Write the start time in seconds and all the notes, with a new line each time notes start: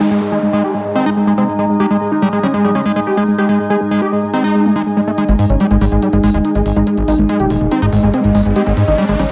Already playing: G#3 D#4 D#5 G#5, downlifter
0.00 G#3 D#4
0.11 G#3
0.21 G#3
0.32 G#3 D#4
0.43 G#3
0.53 G#3
0.64 G4
0.74 G#3
0.85 G#3
0.95 C4 D#4
1.06 G#3 D#4
1.17 G#3
1.27 G#3
1.38 G#3 C4
1.48 G#3
1.59 G#3
1.69 G#3
1.80 G#3 G4
1.91 G#3
2.01 G#3
2.12 D#4
2.22 G3 G#3
2.33 G#3
2.43 G3 C#4
2.54 G#3
2.64 G3 G#3
2.75 G#3 C#4
2.86 G#3
2.96 G#3
3.07 G4
3.17 G#3
3.28 G#3
3.38 G#3 G4
3.49 G#3
3.60 G#3
3.70 G#3 G#4
3.81 G#3
3.91 G#3
4.02 G4
4.12 G#3
4.23 G#3
4.33 C4 D#4
4.44 G#3 D#4
4.55 G#3
4.65 G#3
4.76 G#3 D#4
4.86 G#3
4.97 G#3
5.07 G#3 A3
5.18 G#3 D#4, closed hi-hat, riser
5.29 G#1 G#3, closed hi-hat
5.39 G#2 G#3, open hi-hat
5.50 G#1 C#4, closed hi-hat
5.60 G3 G#3, closed hi-hat
5.71 G#1 G#3, closed hi-hat
5.81 G#1 G3 G#3, open hi-hat
5.92 G#1 G#3, closed hi-hat
6.02 G3 G#3, closed hi-hat
6.13 G#1 G#3, closed hi-hat
6.24 G#1 G#3, open hi-hat
6.34 D#1 G#3, closed hi-hat
6.45 D#4, closed hi-hat
6.55 G#1 G#3, closed hi-hat
6.66 G#1 G#3, open hi-hat
6.76 G#1 G#3 D#4, closed hi-hat
6.87 G#3, closed hi-hat
6.98 G#1 G#3, closed hi-hat
7.08 G#1 G#3 D#4, open hi-hat
7.19 G#1 G#3, closed hi-hat
7.29 G#3, closed hi-hat
7.40 D#1 G4, closed hi-hat
7.50 D#1 G#3, open hi-hat
7.61 D#1 G#3, closed hi-hat
7.71 C4 D#4, closed hi-hat
7.82 G#1 G#3 D#4, closed hi-hat
7.93 G#1 G#3, open hi-hat
8.03 G#1 G#3, closed hi-hat
8.14 G#3 C4, closed hi-hat
8.24 G#1 G#3, closed hi-hat
8.35 G#1 G#3, open hi-hat
8.45 G#1 G#3, closed hi-hat
8.56 G#3 G4, closed hi-hat
8.67 G#1 G#3, closed hi-hat
8.77 G#2 G#3, open hi-hat
8.88 G#1 D#4, closed hi-hat
8.98 G3 G#3, closed hi-hat
9.09 G#1 G#3, closed hi-hat
9.19 G#1 G3 C#4, open hi-hat